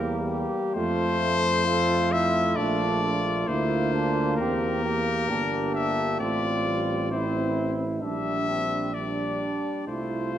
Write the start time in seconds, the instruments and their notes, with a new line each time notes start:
Already playing: tuba E2, french horn G3, trombone A#3, flugelhorn G4, trumpet A#4
0.31 flugelhorn G4
0.74 tuba F2, trombone A3, french horn A3, flugelhorn F4, trumpet C5
1.66 french horn A3, trombone F4, flugelhorn A4
2.11 flugelhorn E4, trumpet E5
2.56 tuba A#1, trombone D4, flugelhorn F4, trumpet D5
3.03 flugelhorn F4
3.47 tuba D2, french horn A#3, trombone E4, flugelhorn F4, trumpet C5
3.93 trombone D4
4.37 tuba E2, trombone C4, flugelhorn G4, trumpet A#4
4.83 trombone A#3, flugelhorn G4
5.29 tuba G1, french horn A#3, trombone D4, flugelhorn G4
5.75 trumpet E5
6.19 tuba A1, french horn A3, trombone C4, flugelhorn F4, trumpet D5
6.66 french horn G3
7.11 french horn C4, trombone E4, flugelhorn E4, trumpet C5
8.02 tuba A#1, french horn G3, trombone D4, flugelhorn D4, trumpet E5
8.49 trombone C4
8.94 french horn G3, trombone D4, flugelhorn D4, trumpet D5
9.87 tuba C2, french horn A3, trombone E4, flugelhorn F4, trumpet C5
10.34 trombone F4